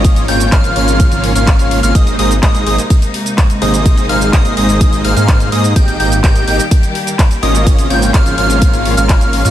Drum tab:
RD |x---x---x---x---|x---x---x---x---|x---x---x---x---|x---x---x---x---|
HH |xxoxxxoxxxoxxxox|xxoxxxoxxxoxxxox|xxoxxxoxxxoxxxox|xxoxxxoxxxoxxxox|
SH |xx-xxx-xxx-xxx-x|xx-xxx-xxx-xxx-x|xx-xxx-xxx-xxx-x|xx-xxx-xxx-xxx-x|
CP |----x-------x---|----x-------x---|----x-------x---|----x-------x---|
BD |o---o---o---o---|o---o---o---o---|o---o---o---o---|o---o---o---o---|

RD |x---x---x---x---|
HH |xxoxxxoxxxoxxxox|
SH |xx-xxx-xxx-xxx-x|
CP |----x-------x---|
BD |o---o---o---o---|